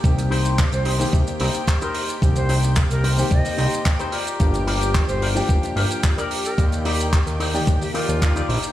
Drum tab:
HH |xxoxxxooxxoxxxox|xxoxxxooxooxxxox|xxoxxxooxxoxxxox|xxoxxxooxooxxxox|
SH |xx-xxx-xxx-xxx-x|xx-xxx-xxx-xxx-x|xx-xxx-xxx-xxx-x|xx-xxx-xxx-xxx-x|
CP |----x-------x---|----x-------x---|----x-------x---|----x-------x---|
BD |o---o---o---o---|o---o---o---o---|o---o---o---o---|o---o---o---o---|